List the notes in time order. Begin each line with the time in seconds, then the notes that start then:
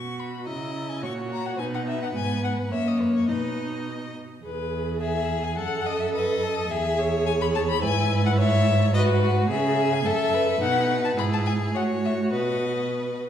Already playing: B2 F#4 C#6
0.20 B5
0.46 C#3 E4 D#5 A#5
0.90 G#5
1.02 A#2 F#4 C#5 C#6
1.32 A#5
1.46 F#5
1.59 B2 D#4 B4 G#5
1.74 F#5
1.88 E5
2.03 F#5
2.15 G#2 B3 G#5
2.44 F#5
2.70 F#2 A#3 C#5 E5
2.87 D#5
3.01 B4
3.16 C#5
3.28 B2 D#4 B4 D#5
4.43 E2 G#4 B4
5.01 G#4 E5
5.44 G#5
5.57 F#2 A4 F#5
5.86 D#5
6.00 E5
6.14 B4 D#5
6.43 A4
6.70 E2 G#4 E5
6.99 C#5
7.26 G#5
7.41 B5
7.55 A5
7.69 B5
7.82 G#2 E4 B4 G#5
8.26 F#5
8.38 C#5 E5
8.94 F#4 B4 D#5
9.22 F#4
9.50 C#3 G#4 E5
9.94 G#5
10.05 F#2 A4 E5
10.34 B4
10.61 B2 D#4 F#5
11.04 A5
11.17 G#2 E4 G#4 B5
11.33 A5
11.46 G#5
11.75 A2 F#4 C#5 F#5
12.05 E5
12.33 B2 B4 D#5